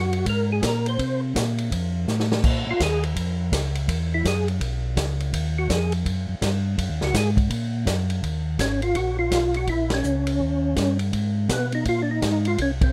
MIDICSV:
0, 0, Header, 1, 4, 480
1, 0, Start_track
1, 0, Key_signature, -6, "minor"
1, 0, Tempo, 362319
1, 1314, Time_signature, 4, 2, 24, 8
1, 17122, End_track
2, 0, Start_track
2, 0, Title_t, "Tonewheel organ"
2, 0, Program_c, 0, 16
2, 0, Note_on_c, 0, 66, 63
2, 343, Note_off_c, 0, 66, 0
2, 389, Note_on_c, 0, 70, 94
2, 666, Note_off_c, 0, 70, 0
2, 694, Note_on_c, 0, 68, 77
2, 848, Note_off_c, 0, 68, 0
2, 885, Note_on_c, 0, 70, 74
2, 1154, Note_off_c, 0, 70, 0
2, 1174, Note_on_c, 0, 72, 81
2, 1603, Note_off_c, 0, 72, 0
2, 3585, Note_on_c, 0, 65, 83
2, 3732, Note_off_c, 0, 65, 0
2, 3753, Note_on_c, 0, 68, 89
2, 4026, Note_off_c, 0, 68, 0
2, 5490, Note_on_c, 0, 64, 67
2, 5642, Note_off_c, 0, 64, 0
2, 5664, Note_on_c, 0, 68, 92
2, 5940, Note_off_c, 0, 68, 0
2, 7399, Note_on_c, 0, 66, 83
2, 7555, Note_off_c, 0, 66, 0
2, 7580, Note_on_c, 0, 68, 85
2, 7856, Note_off_c, 0, 68, 0
2, 9330, Note_on_c, 0, 66, 82
2, 9479, Note_off_c, 0, 66, 0
2, 9504, Note_on_c, 0, 68, 95
2, 9673, Note_off_c, 0, 68, 0
2, 11399, Note_on_c, 0, 61, 83
2, 11673, Note_off_c, 0, 61, 0
2, 11698, Note_on_c, 0, 65, 82
2, 11870, Note_on_c, 0, 66, 87
2, 11873, Note_off_c, 0, 65, 0
2, 12149, Note_off_c, 0, 66, 0
2, 12172, Note_on_c, 0, 65, 109
2, 12664, Note_off_c, 0, 65, 0
2, 12672, Note_on_c, 0, 66, 86
2, 12841, Note_off_c, 0, 66, 0
2, 12843, Note_on_c, 0, 64, 88
2, 13146, Note_off_c, 0, 64, 0
2, 13168, Note_on_c, 0, 61, 77
2, 14539, Note_off_c, 0, 61, 0
2, 15270, Note_on_c, 0, 59, 92
2, 15534, Note_off_c, 0, 59, 0
2, 15563, Note_on_c, 0, 63, 87
2, 15715, Note_off_c, 0, 63, 0
2, 15749, Note_on_c, 0, 65, 96
2, 15923, Note_off_c, 0, 65, 0
2, 15931, Note_on_c, 0, 62, 73
2, 16032, Note_off_c, 0, 62, 0
2, 16044, Note_on_c, 0, 63, 86
2, 16526, Note_off_c, 0, 63, 0
2, 16527, Note_on_c, 0, 65, 85
2, 16695, Note_off_c, 0, 65, 0
2, 16717, Note_on_c, 0, 61, 88
2, 16845, Note_off_c, 0, 61, 0
2, 17001, Note_on_c, 0, 60, 72
2, 17122, Note_off_c, 0, 60, 0
2, 17122, End_track
3, 0, Start_track
3, 0, Title_t, "Tonewheel organ"
3, 0, Program_c, 1, 16
3, 0, Note_on_c, 1, 42, 94
3, 335, Note_off_c, 1, 42, 0
3, 344, Note_on_c, 1, 44, 79
3, 815, Note_off_c, 1, 44, 0
3, 827, Note_on_c, 1, 46, 90
3, 1296, Note_off_c, 1, 46, 0
3, 1310, Note_on_c, 1, 48, 90
3, 1777, Note_off_c, 1, 48, 0
3, 1788, Note_on_c, 1, 46, 94
3, 2256, Note_off_c, 1, 46, 0
3, 2271, Note_on_c, 1, 41, 75
3, 2737, Note_off_c, 1, 41, 0
3, 2754, Note_on_c, 1, 45, 90
3, 3218, Note_off_c, 1, 45, 0
3, 3228, Note_on_c, 1, 46, 82
3, 3511, Note_off_c, 1, 46, 0
3, 3532, Note_on_c, 1, 46, 39
3, 3621, Note_off_c, 1, 46, 0
3, 3707, Note_on_c, 1, 39, 99
3, 4174, Note_off_c, 1, 39, 0
3, 4188, Note_on_c, 1, 41, 78
3, 4654, Note_off_c, 1, 41, 0
3, 4663, Note_on_c, 1, 37, 92
3, 5131, Note_off_c, 1, 37, 0
3, 5140, Note_on_c, 1, 40, 86
3, 5609, Note_off_c, 1, 40, 0
3, 5623, Note_on_c, 1, 42, 105
3, 6090, Note_off_c, 1, 42, 0
3, 6101, Note_on_c, 1, 35, 84
3, 6568, Note_off_c, 1, 35, 0
3, 6579, Note_on_c, 1, 37, 96
3, 7047, Note_off_c, 1, 37, 0
3, 7059, Note_on_c, 1, 39, 93
3, 7527, Note_off_c, 1, 39, 0
3, 7544, Note_on_c, 1, 41, 103
3, 8009, Note_off_c, 1, 41, 0
3, 8022, Note_on_c, 1, 42, 81
3, 8304, Note_off_c, 1, 42, 0
3, 8327, Note_on_c, 1, 42, 45
3, 8415, Note_off_c, 1, 42, 0
3, 8496, Note_on_c, 1, 43, 96
3, 8964, Note_off_c, 1, 43, 0
3, 8978, Note_on_c, 1, 42, 87
3, 9135, Note_off_c, 1, 42, 0
3, 9137, Note_on_c, 1, 39, 57
3, 9299, Note_off_c, 1, 39, 0
3, 9300, Note_on_c, 1, 37, 72
3, 9449, Note_off_c, 1, 37, 0
3, 9464, Note_on_c, 1, 44, 106
3, 9928, Note_off_c, 1, 44, 0
3, 9938, Note_on_c, 1, 46, 84
3, 10405, Note_off_c, 1, 46, 0
3, 10415, Note_on_c, 1, 42, 104
3, 10883, Note_off_c, 1, 42, 0
3, 10903, Note_on_c, 1, 39, 77
3, 11368, Note_off_c, 1, 39, 0
3, 11379, Note_on_c, 1, 32, 94
3, 11846, Note_off_c, 1, 32, 0
3, 11856, Note_on_c, 1, 34, 74
3, 12325, Note_off_c, 1, 34, 0
3, 12336, Note_on_c, 1, 35, 85
3, 12806, Note_off_c, 1, 35, 0
3, 12820, Note_on_c, 1, 34, 83
3, 13289, Note_off_c, 1, 34, 0
3, 13307, Note_on_c, 1, 37, 93
3, 13772, Note_off_c, 1, 37, 0
3, 13778, Note_on_c, 1, 39, 80
3, 14249, Note_off_c, 1, 39, 0
3, 14262, Note_on_c, 1, 43, 92
3, 14732, Note_off_c, 1, 43, 0
3, 14742, Note_on_c, 1, 44, 83
3, 15213, Note_off_c, 1, 44, 0
3, 15228, Note_on_c, 1, 47, 99
3, 15696, Note_off_c, 1, 47, 0
3, 15704, Note_on_c, 1, 46, 72
3, 16175, Note_off_c, 1, 46, 0
3, 16188, Note_on_c, 1, 44, 85
3, 16658, Note_off_c, 1, 44, 0
3, 16670, Note_on_c, 1, 36, 75
3, 17122, Note_off_c, 1, 36, 0
3, 17122, End_track
4, 0, Start_track
4, 0, Title_t, "Drums"
4, 168, Note_on_c, 9, 51, 46
4, 300, Note_off_c, 9, 51, 0
4, 346, Note_on_c, 9, 51, 65
4, 349, Note_on_c, 9, 36, 21
4, 478, Note_off_c, 9, 51, 0
4, 481, Note_off_c, 9, 36, 0
4, 830, Note_on_c, 9, 36, 17
4, 830, Note_on_c, 9, 38, 65
4, 830, Note_on_c, 9, 44, 54
4, 830, Note_on_c, 9, 51, 63
4, 962, Note_off_c, 9, 36, 0
4, 962, Note_off_c, 9, 38, 0
4, 962, Note_off_c, 9, 44, 0
4, 962, Note_off_c, 9, 51, 0
4, 1139, Note_on_c, 9, 51, 46
4, 1271, Note_off_c, 9, 51, 0
4, 1313, Note_on_c, 9, 36, 19
4, 1314, Note_on_c, 9, 51, 57
4, 1445, Note_off_c, 9, 36, 0
4, 1447, Note_off_c, 9, 51, 0
4, 1794, Note_on_c, 9, 36, 20
4, 1800, Note_on_c, 9, 38, 66
4, 1800, Note_on_c, 9, 44, 59
4, 1800, Note_on_c, 9, 51, 69
4, 1927, Note_off_c, 9, 36, 0
4, 1933, Note_off_c, 9, 38, 0
4, 1933, Note_off_c, 9, 44, 0
4, 1933, Note_off_c, 9, 51, 0
4, 2098, Note_on_c, 9, 51, 48
4, 2231, Note_off_c, 9, 51, 0
4, 2275, Note_on_c, 9, 36, 24
4, 2279, Note_on_c, 9, 51, 62
4, 2407, Note_off_c, 9, 36, 0
4, 2411, Note_off_c, 9, 51, 0
4, 2756, Note_on_c, 9, 38, 43
4, 2756, Note_on_c, 9, 44, 48
4, 2888, Note_off_c, 9, 38, 0
4, 2888, Note_off_c, 9, 44, 0
4, 2912, Note_on_c, 9, 38, 53
4, 3044, Note_off_c, 9, 38, 0
4, 3069, Note_on_c, 9, 38, 82
4, 3202, Note_off_c, 9, 38, 0
4, 3228, Note_on_c, 9, 49, 73
4, 3231, Note_on_c, 9, 36, 66
4, 3360, Note_off_c, 9, 49, 0
4, 3364, Note_off_c, 9, 36, 0
4, 3710, Note_on_c, 9, 36, 25
4, 3713, Note_on_c, 9, 38, 62
4, 3713, Note_on_c, 9, 44, 45
4, 3713, Note_on_c, 9, 51, 63
4, 3842, Note_off_c, 9, 36, 0
4, 3846, Note_off_c, 9, 38, 0
4, 3846, Note_off_c, 9, 44, 0
4, 3846, Note_off_c, 9, 51, 0
4, 4019, Note_on_c, 9, 51, 47
4, 4152, Note_off_c, 9, 51, 0
4, 4189, Note_on_c, 9, 36, 21
4, 4192, Note_on_c, 9, 51, 65
4, 4321, Note_off_c, 9, 36, 0
4, 4324, Note_off_c, 9, 51, 0
4, 4668, Note_on_c, 9, 36, 25
4, 4672, Note_on_c, 9, 38, 66
4, 4672, Note_on_c, 9, 44, 50
4, 4672, Note_on_c, 9, 51, 69
4, 4800, Note_off_c, 9, 36, 0
4, 4804, Note_off_c, 9, 38, 0
4, 4804, Note_off_c, 9, 44, 0
4, 4804, Note_off_c, 9, 51, 0
4, 4971, Note_on_c, 9, 51, 49
4, 5104, Note_off_c, 9, 51, 0
4, 5145, Note_on_c, 9, 36, 27
4, 5149, Note_on_c, 9, 51, 71
4, 5278, Note_off_c, 9, 36, 0
4, 5282, Note_off_c, 9, 51, 0
4, 5626, Note_on_c, 9, 36, 23
4, 5634, Note_on_c, 9, 38, 62
4, 5634, Note_on_c, 9, 44, 61
4, 5634, Note_on_c, 9, 51, 64
4, 5758, Note_off_c, 9, 36, 0
4, 5767, Note_off_c, 9, 38, 0
4, 5767, Note_off_c, 9, 44, 0
4, 5767, Note_off_c, 9, 51, 0
4, 5935, Note_on_c, 9, 51, 46
4, 6068, Note_off_c, 9, 51, 0
4, 6102, Note_on_c, 9, 36, 23
4, 6107, Note_on_c, 9, 51, 61
4, 6235, Note_off_c, 9, 36, 0
4, 6239, Note_off_c, 9, 51, 0
4, 6583, Note_on_c, 9, 36, 23
4, 6584, Note_on_c, 9, 38, 69
4, 6584, Note_on_c, 9, 44, 51
4, 6584, Note_on_c, 9, 51, 66
4, 6716, Note_off_c, 9, 36, 0
4, 6717, Note_off_c, 9, 38, 0
4, 6717, Note_off_c, 9, 44, 0
4, 6717, Note_off_c, 9, 51, 0
4, 6894, Note_on_c, 9, 51, 46
4, 7026, Note_off_c, 9, 51, 0
4, 7064, Note_on_c, 9, 36, 24
4, 7068, Note_on_c, 9, 51, 67
4, 7196, Note_off_c, 9, 36, 0
4, 7201, Note_off_c, 9, 51, 0
4, 7544, Note_on_c, 9, 36, 23
4, 7549, Note_on_c, 9, 38, 70
4, 7549, Note_on_c, 9, 44, 51
4, 7549, Note_on_c, 9, 51, 61
4, 7676, Note_off_c, 9, 36, 0
4, 7681, Note_off_c, 9, 38, 0
4, 7681, Note_off_c, 9, 44, 0
4, 7681, Note_off_c, 9, 51, 0
4, 7843, Note_on_c, 9, 51, 47
4, 7975, Note_off_c, 9, 51, 0
4, 8023, Note_on_c, 9, 36, 26
4, 8028, Note_on_c, 9, 51, 59
4, 8155, Note_off_c, 9, 36, 0
4, 8160, Note_off_c, 9, 51, 0
4, 8503, Note_on_c, 9, 36, 18
4, 8505, Note_on_c, 9, 38, 66
4, 8505, Note_on_c, 9, 44, 47
4, 8505, Note_on_c, 9, 51, 69
4, 8636, Note_off_c, 9, 36, 0
4, 8638, Note_off_c, 9, 38, 0
4, 8638, Note_off_c, 9, 44, 0
4, 8638, Note_off_c, 9, 51, 0
4, 8983, Note_on_c, 9, 36, 25
4, 8987, Note_on_c, 9, 51, 65
4, 9116, Note_off_c, 9, 36, 0
4, 9120, Note_off_c, 9, 51, 0
4, 9288, Note_on_c, 9, 38, 53
4, 9421, Note_off_c, 9, 38, 0
4, 9462, Note_on_c, 9, 36, 22
4, 9465, Note_on_c, 9, 38, 68
4, 9465, Note_on_c, 9, 44, 59
4, 9465, Note_on_c, 9, 51, 72
4, 9595, Note_off_c, 9, 36, 0
4, 9597, Note_off_c, 9, 38, 0
4, 9597, Note_off_c, 9, 44, 0
4, 9597, Note_off_c, 9, 51, 0
4, 9766, Note_on_c, 9, 36, 61
4, 9770, Note_on_c, 9, 51, 49
4, 9898, Note_off_c, 9, 36, 0
4, 9903, Note_off_c, 9, 51, 0
4, 9941, Note_on_c, 9, 51, 70
4, 9942, Note_on_c, 9, 36, 23
4, 10074, Note_off_c, 9, 36, 0
4, 10074, Note_off_c, 9, 51, 0
4, 10421, Note_on_c, 9, 36, 23
4, 10424, Note_on_c, 9, 38, 64
4, 10424, Note_on_c, 9, 44, 59
4, 10424, Note_on_c, 9, 51, 65
4, 10554, Note_off_c, 9, 36, 0
4, 10557, Note_off_c, 9, 38, 0
4, 10557, Note_off_c, 9, 44, 0
4, 10557, Note_off_c, 9, 51, 0
4, 10728, Note_on_c, 9, 51, 48
4, 10860, Note_off_c, 9, 51, 0
4, 10902, Note_on_c, 9, 36, 17
4, 10910, Note_on_c, 9, 51, 51
4, 11035, Note_off_c, 9, 36, 0
4, 11042, Note_off_c, 9, 51, 0
4, 11380, Note_on_c, 9, 36, 22
4, 11381, Note_on_c, 9, 38, 62
4, 11381, Note_on_c, 9, 44, 52
4, 11381, Note_on_c, 9, 51, 61
4, 11513, Note_off_c, 9, 36, 0
4, 11514, Note_off_c, 9, 38, 0
4, 11514, Note_off_c, 9, 44, 0
4, 11514, Note_off_c, 9, 51, 0
4, 11685, Note_on_c, 9, 51, 43
4, 11818, Note_off_c, 9, 51, 0
4, 11856, Note_on_c, 9, 51, 56
4, 11858, Note_on_c, 9, 36, 21
4, 11988, Note_off_c, 9, 51, 0
4, 11991, Note_off_c, 9, 36, 0
4, 12340, Note_on_c, 9, 36, 16
4, 12341, Note_on_c, 9, 38, 58
4, 12341, Note_on_c, 9, 44, 50
4, 12341, Note_on_c, 9, 51, 61
4, 12472, Note_off_c, 9, 36, 0
4, 12473, Note_off_c, 9, 38, 0
4, 12473, Note_off_c, 9, 44, 0
4, 12473, Note_off_c, 9, 51, 0
4, 12641, Note_on_c, 9, 51, 44
4, 12773, Note_off_c, 9, 51, 0
4, 12815, Note_on_c, 9, 51, 49
4, 12820, Note_on_c, 9, 36, 24
4, 12948, Note_off_c, 9, 51, 0
4, 12952, Note_off_c, 9, 36, 0
4, 13116, Note_on_c, 9, 38, 75
4, 13116, Note_on_c, 9, 51, 63
4, 13249, Note_off_c, 9, 38, 0
4, 13249, Note_off_c, 9, 51, 0
4, 13295, Note_on_c, 9, 44, 49
4, 13427, Note_off_c, 9, 44, 0
4, 13601, Note_on_c, 9, 51, 62
4, 13734, Note_off_c, 9, 51, 0
4, 13783, Note_on_c, 9, 36, 17
4, 13915, Note_off_c, 9, 36, 0
4, 14260, Note_on_c, 9, 38, 59
4, 14260, Note_on_c, 9, 44, 50
4, 14260, Note_on_c, 9, 51, 54
4, 14264, Note_on_c, 9, 36, 22
4, 14393, Note_off_c, 9, 38, 0
4, 14393, Note_off_c, 9, 44, 0
4, 14393, Note_off_c, 9, 51, 0
4, 14396, Note_off_c, 9, 36, 0
4, 14561, Note_on_c, 9, 51, 47
4, 14693, Note_off_c, 9, 51, 0
4, 14745, Note_on_c, 9, 36, 17
4, 14745, Note_on_c, 9, 51, 55
4, 14877, Note_off_c, 9, 51, 0
4, 14878, Note_off_c, 9, 36, 0
4, 15226, Note_on_c, 9, 36, 18
4, 15226, Note_on_c, 9, 38, 65
4, 15226, Note_on_c, 9, 44, 61
4, 15226, Note_on_c, 9, 51, 58
4, 15358, Note_off_c, 9, 38, 0
4, 15358, Note_off_c, 9, 44, 0
4, 15358, Note_off_c, 9, 51, 0
4, 15359, Note_off_c, 9, 36, 0
4, 15529, Note_on_c, 9, 51, 44
4, 15662, Note_off_c, 9, 51, 0
4, 15704, Note_on_c, 9, 51, 54
4, 15708, Note_on_c, 9, 36, 26
4, 15836, Note_off_c, 9, 51, 0
4, 15840, Note_off_c, 9, 36, 0
4, 16191, Note_on_c, 9, 36, 17
4, 16191, Note_on_c, 9, 38, 60
4, 16191, Note_on_c, 9, 44, 54
4, 16191, Note_on_c, 9, 51, 67
4, 16324, Note_off_c, 9, 36, 0
4, 16324, Note_off_c, 9, 38, 0
4, 16324, Note_off_c, 9, 44, 0
4, 16324, Note_off_c, 9, 51, 0
4, 16493, Note_on_c, 9, 51, 45
4, 16626, Note_off_c, 9, 51, 0
4, 16670, Note_on_c, 9, 51, 58
4, 16672, Note_on_c, 9, 36, 19
4, 16802, Note_off_c, 9, 51, 0
4, 16804, Note_off_c, 9, 36, 0
4, 16975, Note_on_c, 9, 51, 62
4, 16977, Note_on_c, 9, 36, 75
4, 17107, Note_off_c, 9, 51, 0
4, 17109, Note_off_c, 9, 36, 0
4, 17122, End_track
0, 0, End_of_file